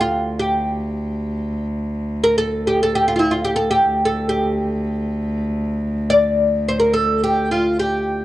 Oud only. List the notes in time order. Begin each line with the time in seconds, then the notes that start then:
0.01 F4
0.39 G4
2.24 A#4
2.38 A4
2.67 G4
2.83 A4
2.95 G4
3.08 F4
3.16 E4 F4
3.31 F4
3.45 G4
3.56 A4
3.71 G4
4.05 A4
4.29 G4
6.10 D5
6.68 C5
6.80 A#4
6.93 A4
7.24 G4
7.51 F4
7.79 G4